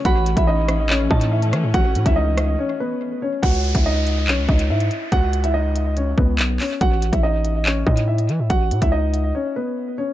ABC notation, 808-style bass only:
X:1
M:4/4
L:1/16
Q:1/4=142
K:C#m
V:1 name="808-style bass" clef=bass
A,,,3 A,,,6- A,,, A,,4 E, A,, | A,,,2 A,, C,,4- C,, z8 | C,,3 C,,4- C,, B,,, C,, C,,2 G,,2 z2 | C,,8- C,,2 C,,2 B,,,2 z2 |
A,,,3 A,,,6- A,,, A,,4 E, A,, | A,,,2 A,, C,,4- C,, z8 |]